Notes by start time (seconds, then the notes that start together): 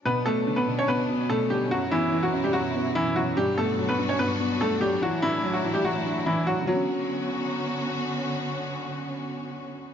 0.05 B2 F#3 B3 C#4 D4 B4
0.26 A3 B3 A4
0.47 D3
0.56 B3 B4
0.67 B2
0.79 C#4 C#5
0.88 B2 B3 B4
1.09 B3
1.30 B2 A3 A4
1.50 D3 G3 G4
1.71 F#2 F#3 E4 F#4
1.91 E3 B3 E4
2.12 E3
2.23 F#3 F#4
2.33 F#2
2.44 G3 G4
2.53 F#2 F#3 F#4
2.74 B3
2.95 F#2 E3 E4
3.16 E3 F#3 F#4
3.37 G2 F#3 G3 D4 F#4 G4
3.57 A3 B3 A4
3.78 F#3
3.89 B3 B4
3.98 G2
4.09 C#4 C#5
4.19 G2 B3 B4
4.40 B3
4.60 G2 A3 A4
4.81 F#3 G3 G4
5.02 A2 E3 F#3 E4 F#4
5.22 E3 D4 E4
5.43 F#3
5.53 F#3 F#4
5.64 E3
5.74 G3 G4
5.85 E3 F#3 F#4
6.05 D4
6.26 E3 E4
6.47 F#3 F#4
6.61 D3
6.65 D3 F#3 B3 C#4 F#4
6.73 C#4